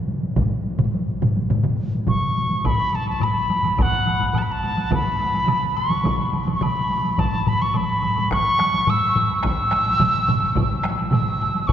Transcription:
0.08 taiko high
0.23 taiko high
0.36 taiko, taiko low-mid, taiko mid, taiko high
0.65 taiko high
0.79 taiko low-mid, taiko mid, taiko high
0.94 taiko high
1.22 taiko low-mid, taiko mid, taiko high
1.37 taiko high
1.50 taiko low-mid, taiko mid, taiko high
1.63 taiko low-mid, taiko mid
1.80 taiko high
1.95 taiko high
2.07 piccolo C#6, taiko, taiko low-mid, taiko mid, taiko high
2.37 taiko high
2.51 taiko high
2.64 piccolo B5, taiko, taiko low-mid, taiko high, high woodblock
2.93 piccolo A5, taiko high, high woodblock
3.07 piccolo A5, taiko high, high woodblock
3.20 piccolo B5, taiko low-mid, taiko high, high woodblock
3.50 taiko high, high woodblock
3.63 taiko low-mid, taiko high, high woodblock
3.78 piccolo F#5, taiko, taiko low-mid, taiko high, high woodblock
3.91 taiko low-mid
4.05 taiko low-mid, taiko high, high woodblock
4.19 taiko low-mid, taiko high, high woodblock
4.33 taiko low-mid, taiko high, high woodblock
4.38 piccolo A5
4.42 piccolo B5
4.52 piccolo A5
4.63 taiko high, high woodblock
4.77 taiko high, high woodblock
4.91 piccolo B5, taiko, taiko mid, taiko high, high woodblock
5.19 taiko high, high woodblock
5.33 taiko high, high woodblock
5.47 taiko mid, taiko high, high woodblock
5.77 piccolo C#6, high woodblock
5.89 taiko mid, taiko high, high woodblock
6.04 taiko, taiko mid, taiko high, high woodblock
6.18 taiko mid
6.33 taiko mid, taiko high, high woodblock
6.47 taiko mid, taiko high, high woodblock
6.55 piccolo C#6
6.61 piccolo B5, taiko mid, taiko high, high woodblock
6.90 taiko high, high woodblock
7.04 taiko high, high woodblock
7.18 piccolo A5, taiko, taiko low-mid, taiko high, high woodblock
7.31 taiko low-mid
7.46 piccolo B5, taiko low-mid, taiko high, high woodblock
7.60 piccolo C#6, taiko high, high woodblock
7.74 piccolo B5, taiko low-mid, taiko high, high woodblock
8.02 taiko low-mid, taiko high, high woodblock
8.16 taiko low-mid, taiko high, high woodblock
8.31 piccolo C#6, taiko rim, taiko, taiko high, high woodblock
8.59 taiko rim, taiko high, high woodblock
8.73 taiko high, high woodblock
8.87 piccolo E6, taiko low-mid, taiko high, high woodblock
9.15 taiko low-mid, taiko high, high woodblock
9.29 taiko high, high woodblock
9.43 piccolo E6, taiko rim, taiko, taiko high, high woodblock
9.71 taiko rim, taiko high, high woodblock
9.73 taiko rim
9.86 taiko high, high woodblock
10.00 taiko low-mid, taiko mid, taiko high, high woodblock
10.28 taiko low-mid, taiko mid, taiko high, high woodblock
10.41 taiko high, high woodblock
10.55 taiko, taiko low-mid, taiko mid, taiko high, high woodblock
10.84 taiko rim, taiko high, high woodblock
10.85 taiko rim
10.99 taiko high, high woodblock
11.11 piccolo E6, taiko low-mid, taiko mid, taiko high, high woodblock
11.42 high woodblock
11.55 taiko high, high woodblock
11.67 piccolo C#6, taiko, taiko low-mid, taiko high, high woodblock

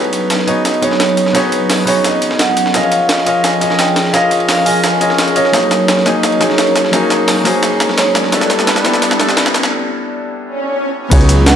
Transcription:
Already playing: analog synth pad F#3 C#4 B4 D#5, felt piano B3 D#4 F#4 G#4 C#5, vibraphone B4
0.04 ride
0.13 closed hi-hat, ride
0.30 snare, closed hi-hat, ride
0.39 snare
0.47 felt piano B3 D#4 F#4 G#4 C#5, vibraphone D#5, closed hi-hat, ride
0.65 snare, closed hi-hat, ride
0.74 ride
0.82 felt piano B3 D#4 F#4 G#4 C#5, vibraphone C#5, closed hi-hat, ride
0.91 snare
1.00 snare, closed hi-hat, ride
1.09 ride
1.17 closed hi-hat, ride
1.26 snare
1.33 felt piano B3 D#4 F#4 G#4 C#5, vibraphone B4, snare, closed hi-hat, ride
1.52 closed hi-hat, ride
1.70 snare, closed hi-hat, open hi-hat
1.79 snare
1.85 felt piano B3 D#4 F#4 G#4 C#5, vibraphone C#5, open hi-hat, ride
2.04 vibraphone D#5, snare, closed hi-hat, ride
2.22 closed hi-hat, ride
2.31 snare
2.39 vibraphone F#5, snare, closed hi-hat, ride
2.57 closed hi-hat, ride
2.66 snare
2.73 analog synth pad F3 G#4, felt piano C#4 F4 G#4 A#4 D#5, vibraphone F5, snare, closed hi-hat, ride
2.83 ride
2.92 closed hi-hat, ride
3.09 snare, closed hi-hat, ride
3.18 snare
3.26 felt piano C#4 F4 G#4 A#4 D#5, vibraphone F5, closed hi-hat, ride
3.44 vibraphone G#5, snare, closed hi-hat, ride
3.53 ride
3.61 felt piano C#4 F4 G#4 A#4 D#5, closed hi-hat, ride
3.70 snare
3.79 vibraphone G5, snare, closed hi-hat, ride
3.88 ride
3.96 snare, closed hi-hat, ride
4.05 snare
4.12 felt piano C#4 F4 G#4 A#4 D#5, vibraphone F5, snare, closed hi-hat, ride
4.31 closed hi-hat, ride
4.40 ride
4.48 vibraphone F5, snare, closed hi-hat, open hi-hat
4.58 snare
4.65 felt piano C#4 F4 G#4 A#4 D#5, vibraphone G#5, open hi-hat, ride
4.84 snare, closed hi-hat, ride
5.00 felt piano C#4 F4 G#4 A#4 D#5, closed hi-hat, ride
5.10 snare
5.18 snare, closed hi-hat, ride
5.28 closed hi-hat
5.35 felt piano C#4 F4 G#4 A#4 D#5, vibraphone C#5, closed hi-hat, ride
5.45 snare
5.52 felt piano F#3 A#3 C#4 D#4 G#4, analog synth pad F#3 A#4, snare, closed hi-hat, ride, riser
5.62 ride
5.71 snare, closed hi-hat, ride
5.88 snare, closed hi-hat, ride
5.97 snare
6.05 felt piano F#3 A#3 C#4 D#4 G#4, vibraphone D#5, snare, closed hi-hat, ride
6.23 snare, closed hi-hat, ride
6.32 ride
6.40 felt piano F#3 A#3 C#4 D#4 G#4, vibraphone C#5, snare, closed hi-hat, ride
6.50 snare
6.58 snare, closed hi-hat, ride
6.67 ride
6.76 snare, closed hi-hat, ride
6.85 snare
6.91 felt piano F#3 A#3 C#4 D#4 G#4, vibraphone A#4, snare, closed hi-hat, ride
7.10 snare, closed hi-hat, ride
7.28 snare, closed hi-hat, open hi-hat
7.37 snare
7.44 felt piano F#3 A#3 C#4 D#4 G#4, vibraphone C5, snare, open hi-hat, ride
7.63 snare, closed hi-hat, ride
7.80 snare, closed hi-hat, ride
7.89 snare
7.97 vibraphone C#5, snare, closed hi-hat, ride
8.15 vibraphone D5, snare, closed hi-hat, ride
8.24 snare
8.31 felt piano G3 B3 D4 E4 A4, analog synth pad G3 D4 A4 B4, snare, closed hi-hat, ride
8.41 snare, ride
8.50 snare, closed hi-hat, ride
8.59 snare
8.67 snare, closed hi-hat, ride
8.76 snare
8.84 felt piano G3 B3 D4 E4 A4, snare, closed hi-hat, ride
8.94 snare
9.02 snare, closed hi-hat, ride
9.11 snare, ride
9.19 felt piano G3 B3 D4 E4 A4, snare, closed hi-hat, ride
9.29 snare
9.37 snare, closed hi-hat, ride
9.46 snare, ride
9.54 snare, closed hi-hat, ride
9.63 snare
10.42 swell
11.10 detuned saw bass C#2, analog synth pad F#3 C#4 D#4 B4, felt piano B3 D#4 F#4 G#4 C#5, kick, closed hi-hat, crash, ride
11.21 ride, tambourine
11.29 closed hi-hat, ride, tambourine
11.46 vibraphone F#5, snare, closed hi-hat, ride

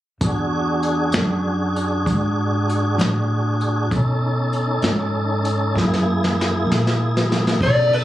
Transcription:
0.21 upright bass E2, tonewheel organ D4 F#4 G#4, kick, closed hi-hat
0.83 closed hi-hat
1.12 upright bass F#2, snare, closed hi-hat
1.76 closed hi-hat
2.06 upright bass G#2, kick, closed hi-hat
2.69 closed hi-hat
2.98 upright bass A2, snare, closed hi-hat
3.61 closed hi-hat
3.91 upright bass B2, tonewheel organ C#4 D#4 A4, kick, closed hi-hat
4.53 closed hi-hat
4.82 upright bass G#2, snare, closed hi-hat
5.45 closed hi-hat
5.75 upright bass F#2, tonewheel organ A#3 E4 G#4, kick, snare
5.93 snare
6.24 snare
6.41 snare
6.67 upright bass A#2
6.72 snare
6.87 snare
7.17 snare
7.32 snare
7.47 snare
7.61 upright bass B2, tonewheel organ C#3 D#4 A4, electric slide guitar D5, kick, ride
7.93 electric slide guitar B4, ride

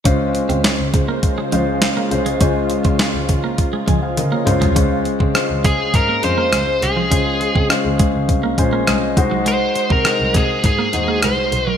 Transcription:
0.04 double bass C#2, analog synth pad C#3 G#3 F4 C5, grand piano G#3 C#4 F4 C5, clean electric guitar C#4, kick, closed hi-hat
0.35 muted clean electric guitar stroke, closed hi-hat
0.49 double bass C#2, clean electric guitar C4, closed hi-hat
0.64 clean electric guitar C#4, snare, closed hi-hat
0.79 double bass C#2
0.94 double bass C#3, muted clean electric guitar stroke, kick, closed hi-hat
1.08 clean electric guitar A#3
1.23 muted clean electric guitar stroke, kick, closed hi-hat
1.38 clean electric guitar G#3
1.52 double bass C#2, clean electric guitar F3, grand piano G#3 C#4 F4 C5, closed hi-hat
1.82 snare, closed hi-hat
1.97 clean electric guitar A#3
2.10 double bass C2, grand piano G#3 C#4 F4 C5, muted clean electric guitar stroke, closed hi-hat
2.26 clean electric guitar G#3, closed hi-hat
2.40 double bass C#2, grand piano G#3 C#4 F4 C5, clean electric guitar C#4, kick, closed hi-hat
2.70 muted clean electric guitar stroke, closed hi-hat
2.84 double bass C#2, clean electric guitar C4, kick, closed hi-hat
2.99 clean electric guitar C#4, snare, closed hi-hat
3.14 double bass C#2
3.29 double bass C#3, muted clean electric guitar stroke, kick, closed hi-hat
3.44 clean electric guitar A#3
3.58 muted clean electric guitar stroke, kick, closed hi-hat
3.73 clean electric guitar G#3
3.88 double bass C#2, clean electric guitar F3, grand piano D#5 G#5, kick, closed hi-hat
4.03 grand piano C5 F5
4.17 double bass C#3, grand piano A#4 D#5, closed hi-hat, high tom
4.31 clean electric guitar A#3, grand piano G#4 C#5
4.45 double bass C#2, grand piano G#3 C#4 F4 C5, analog synth pad F4, muted clean electric guitar stroke, closed hi-hat, mid tom
4.61 double bass C2, clean electric guitar G#3, closed hi-hat, floor tom
4.75 double bass C#2, grand piano G#3 C#4 F4 C5, clean electric guitar C#4, kick, closed hi-hat
5.05 muted clean electric guitar stroke, closed hi-hat
5.20 double bass C#3, clean electric guitar C4, kick
5.34 grand piano G#3 C#4 F4 C5, cross-stick, closed hi-hat
5.49 double bass C#2
5.64 double bass C#3, clean electric guitar G#3, lead electric guitar G#4, kick, closed hi-hat
5.94 double bass G#2, lead electric guitar A#4, kick, closed hi-hat
6.09 clean electric guitar A#3
6.23 double bass F2, grand piano G#3 C#4 F4 C5, lead electric guitar C5, muted clean electric guitar stroke, closed hi-hat
6.38 clean electric guitar A#3
6.52 double bass C#2, clean electric guitar G#3, cross-stick, closed hi-hat
6.67 muted clean electric guitar stroke
6.82 double bass C2, lead electric guitar G#4, closed hi-hat
6.97 clean electric guitar F3
7.10 double bass C#2, grand piano G#3 C#4 F4 C5, clean electric guitar C#4, kick, closed hi-hat
7.40 muted clean electric guitar stroke, closed hi-hat
7.55 double bass C#3, clean electric guitar C4, kick
7.69 grand piano G#3 C#4 F4 C5, cross-stick, closed hi-hat
7.85 double bass C#2
7.99 clean electric guitar G#3, kick, closed hi-hat
8.14 double bass C#2
8.29 double bass C2, kick, closed hi-hat
8.43 clean electric guitar A#3
8.58 double bass A#1, grand piano G#3 C#4 F4 C5 G#5, muted clean electric guitar stroke, kick, closed hi-hat
8.73 clean electric guitar A#3
8.87 double bass C2, clean electric guitar G#3, grand piano D#5, cross-stick, closed hi-hat
9.02 muted clean electric guitar stroke
9.17 double bass C2, grand piano G#3 D#4 F#4 C5, kick, closed hi-hat
9.31 clean electric guitar F#3
9.46 clean electric guitar G#3, lead electric guitar C5, closed hi-hat
9.75 muted clean electric guitar stroke, closed hi-hat
9.90 double bass C3, clean electric guitar C4, lead electric guitar A#4, kick
10.05 grand piano G#3 D#4 F#4 C5, cross-stick, closed hi-hat
10.20 double bass C2
10.34 double bass C3, clean electric guitar G#3, lead electric guitar G#4, kick, closed hi-hat
10.64 double bass G#2, lead electric guitar G#4, kick, closed hi-hat
10.79 clean electric guitar A#3
10.93 double bass D#2, grand piano G#3 D#4 F#4 C5, muted clean electric guitar stroke, closed hi-hat
11.08 clean electric guitar A#3
11.22 double bass C2, clean electric guitar G#3, lead electric guitar C5, cross-stick, closed hi-hat
11.37 muted clean electric guitar stroke
11.52 double bass B1, closed hi-hat
11.67 clean electric guitar F#3, lead electric guitar A#4

